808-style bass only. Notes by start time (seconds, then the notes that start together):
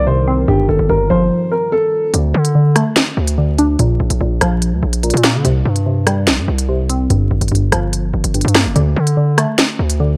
Already playing: C2
0.48 G1
0.69 G1
0.79 G1
0.89 G1
1.10 G1
2.14 D2
2.34 D3
3.17 D2
3.79 A#1
4.00 A#1
4.10 A#1
4.21 A#1
4.41 A#1
4.72 D2
4.83 A#1
5.14 A#2
5.34 D3
5.45 C2
5.65 G2
6.27 A#1
6.38 G2
6.48 C2
7.10 G1
7.31 G1
7.41 G1
7.52 G1
7.72 G1
8.14 G1
8.24 G1
8.45 G2
8.65 F1
8.76 D2
8.96 D3
9.79 D2